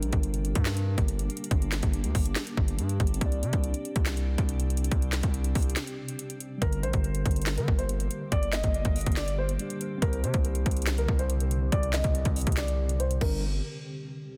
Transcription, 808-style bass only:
0.02 A#1
0.13 G1
0.55 G2
0.98 G1
1.51 G1
1.83 G1
2.04 D2
2.15 G1
2.57 G1
2.79 G2
3.00 G1
3.21 C2
3.43 C3
3.53 C2
3.96 C2
4.38 C2
4.92 C2
5.23 C2
5.55 C2
6.62 G1
6.83 A#1
6.94 G1
7.26 G1
7.57 D3
7.68 G1
8.32 G1
8.64 G1
8.85 G1
9.06 G1
10.02 C2
10.23 C3
10.34 C2
10.66 C2
11.08 C2
11.72 C2
12.04 C2
12.25 C2
12.47 C2
13.21 G1

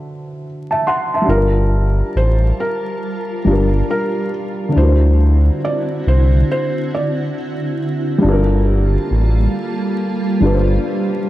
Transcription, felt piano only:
1.29 A#4
2.17 C5
2.60 A#4
3.91 A#4
4.78 C5
5.65 D5
6.08 C5
6.52 C5
6.95 D5

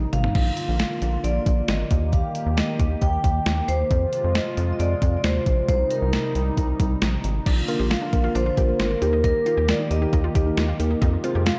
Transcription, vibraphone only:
0.13 F5
0.80 F5
1.24 D5
1.68 D#5
2.12 F5
2.57 D#5
3.01 G5
3.68 C5
4.35 D#5
4.73 D#5
4.79 D5
5.17 D5
5.24 C5
5.68 C5
5.91 A#4
7.91 F5
8.35 C5
8.79 A#4
9.24 A#4
9.69 D5
9.91 D#5
11.46 F5

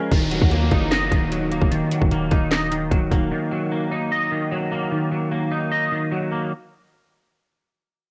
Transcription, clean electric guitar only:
Already playing: F3 G#3 C#4 F4 F5
0.12 D#3
0.31 F#3
0.51 A#3
0.71 D#4
0.91 D#5
1.11 D#3
1.31 F#3
1.51 A#3
1.71 D#3
1.91 F#3
2.11 A#3
2.31 D#4
2.51 D#5
2.71 D#3
2.91 F#3
3.11 A#3
3.32 D#3
3.51 F#3
3.71 A#3
3.91 D#4
4.12 D#5
4.31 D#3
4.51 F#3
4.72 A#3
4.91 D#3
5.12 F#3
5.32 A#3
5.52 D#4
5.72 D#5
5.91 D#3
6.12 F#3
6.32 A#3

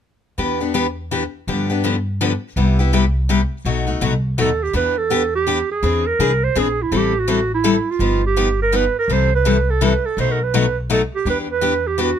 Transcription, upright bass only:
0.38 E2
1.47 G2
2.56 C2
3.65 B1
4.01 C2
4.38 D#2
4.74 E2
5.83 E2
6.19 C2
6.55 A#1
6.91 A1
7.99 G1
9.08 C2
10.17 B1
11.25 E2

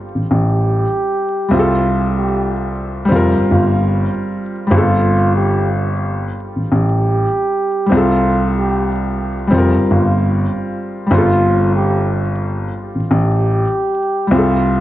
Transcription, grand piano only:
0.15 A1
0.31 A1
1.51 C2
3.11 F1
3.35 G1
3.51 G1
4.71 G1
6.56 A1
6.72 A1
7.92 C2
9.52 F1
9.76 G1
9.91 G1
11.11 G1
12.95 A1
13.11 A1
14.31 C2

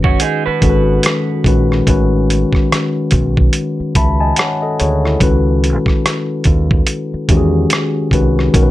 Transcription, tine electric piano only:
Already playing: D#3 G#3 C#4 F#4 B4
0.61 D#3 G#3 C#4 F#4 A4
0.70 B4
1.45 D#3 G#3 C#4 F#4 B4
1.87 D#3 G#3 C#4 F#4 B4
3.96 E5 A5 B5
4.20 D#5 G#5 A5
4.38 C#5 F#5
4.62 A4 D#5
4.80 G#4 C#5
5.04 E4 A4
5.20 D#3 G#3 C#4 F#4 B4
7.28 D#3 G#3 C#4 F#4 G4
7.37 G#4
8.12 D#3 G#3 C#4 F#4 B4
8.53 D#3 G#3 C#4 F#4 A#4
8.62 B4

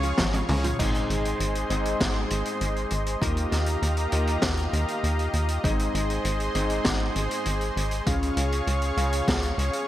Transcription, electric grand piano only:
Already playing: C#3 C#4 F4 G#4 F5
0.79 G#2 C4 D#4 G#4 D#5
1.70 G#2 C4 D#4 G#4 D#5
3.21 D#3 A#3 F4 G4 D#5
4.12 D#3 A#3 F4 G4 D#5
5.64 G#2 C4 D#4 G#4 D#5
6.55 G#2 C4 D#4 G#4 D#5
8.06 C#3 C#4 F4 G#4 F5
8.97 C#3 C#4 F4 G#4 F5

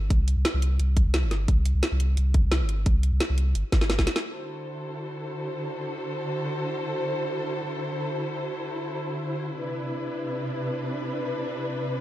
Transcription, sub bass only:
0.10 C2
0.37 C2
0.54 C2
0.79 C2
1.06 C2
1.23 G1
1.48 C2
1.75 C2
1.92 C2
2.17 C2
2.43 C2
2.61 G1
2.86 C2
3.12 C2
3.30 C2
3.55 G1
3.81 G1
3.99 C2

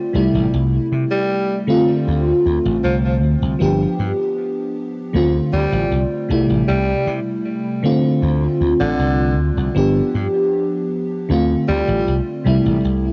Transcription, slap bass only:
0.15 C2
0.35 A1
0.54 C2
0.92 C3
2.07 D2
2.46 D2
2.65 A1
2.84 C2
3.23 D2
3.42 C2
3.61 G1
3.99 G2
5.15 D2
5.53 D2
5.72 A1
5.92 C2
6.30 C2
6.49 A1
6.69 C2
7.07 C3
8.22 D2
8.61 D2
8.80 A1
8.99 C2
9.38 D2
9.57 C2
9.76 G1
10.15 G2
11.30 D2
11.69 D2
11.88 A1
12.07 C2
12.46 C2
12.65 A1
12.84 C2

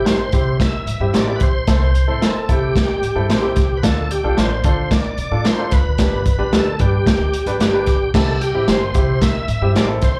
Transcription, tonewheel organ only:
0.08 C5
0.62 E5
1.16 D5
1.36 B4
1.43 C5
2.23 A4
2.51 G4
3.31 G4
3.77 B4
3.85 A4
4.11 G4
4.39 C5
4.92 D5
5.46 C5
5.72 B4
6.53 A4
6.80 G4
7.61 G4
8.15 A4
8.41 G4
8.70 C5
9.23 E5
9.76 D5
10.03 C5

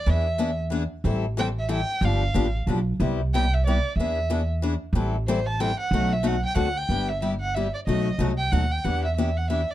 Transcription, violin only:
Already playing: D5
0.09 E5
1.39 G5
1.59 E5
1.71 G5
2.04 F5
3.35 G5
3.54 E5
3.66 D5
3.98 E5
5.27 C5
5.46 A5
5.60 G5
5.80 F#5
6.13 E5
6.27 F#5
6.45 G5
6.57 F#5
6.77 G5
7.09 E5
7.21 E5
7.40 F#5
7.54 E5
7.74 D5
7.87 D#5
8.38 G5
8.52 F#5
8.71 G5
8.84 F#5
9.05 E5
9.17 E5
9.37 F#5
9.51 E5
9.70 D5

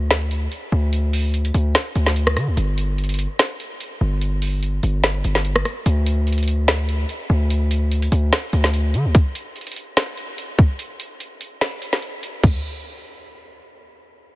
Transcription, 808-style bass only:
Already playing: D2
0.72 D2
1.54 D2
1.96 D2
2.37 D3
2.48 D2
2.57 G1
4.01 G1
4.83 G1
5.24 G1
5.86 D2
7.30 D2
8.12 D2
8.53 D2
8.94 D3
9.05 D2

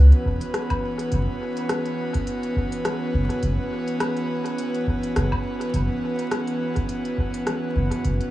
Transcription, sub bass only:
Already playing: C#2
0.26 E1
1.12 F#1
3.14 F#1
3.43 F#1
5.16 F#1
5.74 F#1
7.76 F#1
8.05 F#1

